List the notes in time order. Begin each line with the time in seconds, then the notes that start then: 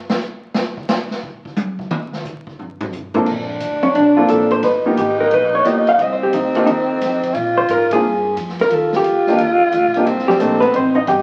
0.10 snare
0.21 hi-hat pedal
0.54 snare
0.77 kick
0.89 snare, hi-hat pedal
1.11 snare
1.23 kick
1.45 kick
1.56 hi-hat pedal, high tom
1.79 kick
1.91 mid tom
2.13 snare
2.25 kick, hi-hat pedal
2.47 kick
2.59 floor tom
2.81 floor tom
2.92 kick, hi-hat pedal
3.14 A#3 C4 D4 F4 A4, floor tom
3.25 A#1 D4, kick, crash
3.60 D2, kick, hi-hat pedal, ride
3.83 C#4, ride
3.95 A#1 D4, kick, ride
4.17 A#3 C4 D4 F4 A4
4.28 A1 A4, kick, hi-hat pedal, ride
4.51 C5, ride
4.63 G1 D#4 B4, snare, ride
4.85 A#3 B3 D#4 F4 G4, kick
4.97 G#1 G4, kick, hi-hat pedal, ride
5.20 A#4
5.31 A#1 B4, kick, ride
5.55 C#5
5.65 C#2 A#3 B3 D#4 F4 G4 D#5, kick, hi-hat pedal, ride
5.87 F5, ride
5.99 C2 C4 D#5, kick, ride
6.12 C5
6.23 G4
6.33 D2 D#4, kick, hi-hat pedal, ride
6.55 A#3 D4 D#4 F4 G4, ride
6.66 D#2 D#4, kick, ride
7.01 F2, kick, snare, hi-hat pedal, ride
7.23 kick, ride
7.34 A#2 F4, kick, ride
7.57 C5, kick
7.68 G#2 A#4, hi-hat pedal, ride
7.91 A#3 C4 D4 F4 G#4, kick, ride
8.03 G2
8.36 F2, kick, hi-hat pedal, ride
8.49 snare
8.59 A#4, snare, ride
8.70 D#2 F4 A4, kick, ride
8.93 G4, snare
9.04 D2, kick, hi-hat pedal, ride
9.27 A#3 D4 D#4 F4 G4, snare
9.38 D#2, kick, ride
9.61 kick
9.72 D2, kick, hi-hat pedal, ride
9.84 A#1
9.94 G1 A#3 C4 D4 D#4 G4, ride
10.06 C2 C4, kick, ride
10.19 snare
10.28 G3 G4, snare
10.40 A#1 A3 A#3 C4 D4 D#4 G4 A4, kick, hi-hat pedal, ride
10.60 B3 B4, kick, ride
10.74 A1 C4 D#4 C5, kick, ride
10.95 D#4 D#5
11.07 G1 G4 G5, hi-hat pedal, ride